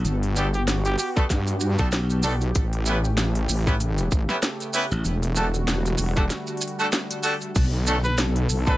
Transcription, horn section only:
0.36 A3 B3 D4 F#4 A4
1.16 A3 B3 D4 F#4 A4
1.79 A3 B3 D4 F#4 A4
2.24 A3 B3 D4 F#4 A4
2.87 B3 C#4 E4 G4 B4
3.67 B3 C#4 E4 G4 B4
4.29 B3 C#4 E4 G4 B4
4.74 B3 C#4 E4 G4 B4
5.36 A3 D4 F#4 G4 A4
6.16 A3 D4 F#4 G4 A4
6.79 A3 D4 F#4 G4 A4
7.24 A3 D4 F#4 G4 A4
7.86 A3 C#4 D4 F#4 A4
8.67 A3 C#4 D4 F#4 A4

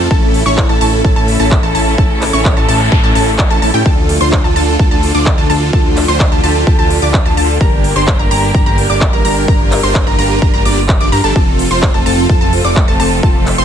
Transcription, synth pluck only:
0.11 A5
0.46 C#6
0.69 A5
0.81 A5
1.04 A5
1.16 A5
1.40 A5
1.63 A5
1.75 A5
1.98 A5
2.33 C#6
2.57 A5
2.69 A5
2.92 A5
3.04 A5
3.15 A5
3.50 A5
3.62 A5
3.74 G5
3.86 A5
4.21 C6
4.44 A5
4.56 A5
4.79 A5
4.91 A5
5.15 D6
5.38 A5
5.50 A5
5.73 A5
6.08 C6
6.32 A5
6.44 A5
6.67 A5
6.79 A5
7.02 D6
7.26 A5
7.37 A5
7.61 A#5
7.96 C6
8.19 A#5
8.31 A#5
8.55 A#5
8.66 A#5
8.90 D6
9.13 A#5
9.25 A#5
9.48 A#5
9.83 C6
10.07 A#5
10.19 A#5
10.42 A#5
10.54 A#5
10.65 D6
11.01 D6
11.12 A#5
11.24 A5
11.36 A5
11.71 C6
11.94 A5
12.06 A5
12.29 A5
12.41 A5
12.65 D6
12.88 A5
13.00 A5
13.23 A5
13.58 C6

